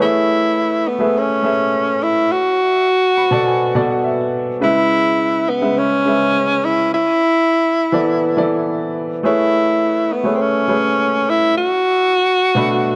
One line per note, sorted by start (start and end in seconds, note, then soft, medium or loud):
0.00 0.71 A3 medium
0.00 0.89 E4 medium
0.00 0.72 G#4 medium
0.00 0.72 B4 medium
0.00 0.72 C#5 medium
0.88 1.19 B3 medium
0.99 1.31 A3 medium
0.99 1.31 G#4 medium
0.99 1.31 B4 medium
0.99 1.32 E5 medium
1.18 2.04 C#4 medium
1.42 2.26 A3 medium
1.42 2.26 G#4 medium
1.42 2.27 B4 medium
1.42 2.27 E5 medium
2.03 2.33 E4 medium
2.32 4.33 F#4 loud
3.17 3.31 B5 medium
3.31 3.62 B2 medium
3.31 3.63 B3 medium
3.31 3.63 A4 medium
3.31 3.63 D5 medium
3.31 3.45 A5 medium
3.47 3.73 G#5 medium
3.75 4.37 B2 medium
3.75 4.37 B3 medium
3.75 4.37 A4 medium
3.75 4.38 D5 medium
3.75 3.88 F#5 medium
3.90 4.03 F#5 medium
4.04 4.58 E5 medium
4.61 5.33 C#3 medium
4.61 5.34 G#3 medium
4.61 5.51 E4 loud
4.61 5.34 B4 medium
4.61 5.34 E5 medium
5.49 5.79 B3 medium
5.61 5.93 C#3 medium
5.61 5.93 G#3 medium
5.61 5.93 B4 medium
5.61 5.94 E5 medium
5.78 6.66 C#4 loud
6.06 6.89 C#3 medium
6.06 6.89 G#3 medium
6.06 6.89 B4 medium
6.06 6.90 E5 medium
6.65 6.93 E4 medium
6.94 8.91 E4 medium
7.92 8.24 E3 medium
7.92 8.24 B3 medium
7.92 8.25 A4 medium
7.92 8.25 D5 medium
8.37 8.99 E3 medium
8.37 8.99 B3 medium
8.37 8.99 A4 medium
8.37 9.00 D5 medium
9.23 9.96 A3 medium
9.23 10.14 E4 medium
9.23 9.96 G#4 medium
9.23 9.97 B4 medium
9.23 9.97 C#5 medium
10.13 10.37 B3 medium
10.24 10.55 A3 medium
10.24 10.56 G#4 medium
10.24 10.56 B4 medium
10.24 10.56 C#5 medium
10.36 10.42 C4 medium
10.41 11.31 C#4 medium
10.68 11.51 A3 medium
10.68 11.51 G#4 medium
10.68 11.51 B4 medium
10.68 11.52 C#5 medium
11.29 11.57 E4 medium
11.57 12.96 F#4 loud
12.55 12.87 B2 medium
12.55 12.87 A3 medium
12.55 12.87 D4 medium
12.55 12.88 B4 medium